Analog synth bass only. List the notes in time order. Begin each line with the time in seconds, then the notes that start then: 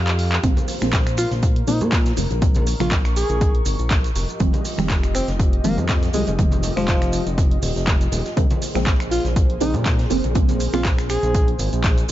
Already playing: F2
0.44 A#1
0.82 A#1
1.31 A#1
1.68 A#1
1.81 A#2
2.17 F1
2.31 A#1
2.80 A#1
3.30 A#1
3.66 G#1
3.79 A#1
4.16 F1
4.40 F1
4.79 F1
5.28 F1
5.64 F1
5.78 F2
6.14 C2
6.27 F1
6.77 F1
7.27 F1
7.63 D#1
7.76 F1
8.12 D#1
8.37 A#1
8.75 A#1
9.25 A#1
9.61 A#1
9.74 A#2
10.11 F1
10.24 A#1
10.74 A#1
11.23 A#1
11.59 G#1
11.73 A#1